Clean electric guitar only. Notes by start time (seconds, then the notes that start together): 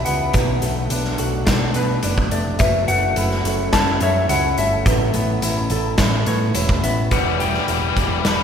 Already playing: E4 G4 B4
0.06 B3
0.33 B2
0.63 A3
0.91 D4
1.19 F#4
1.46 D4
1.76 B4
2.03 D4
2.32 A3
2.61 F#3
2.88 A3
3.18 E4
3.46 F#4
3.74 E4
4.03 C#5
4.30 E4
4.58 A3
4.87 A3
5.14 B3
5.43 E4
5.72 A4
5.99 E4
6.27 C#5
6.55 E4
6.84 B3
7.13 E3
7.40 G3
7.69 E3
7.97 G3
8.27 E3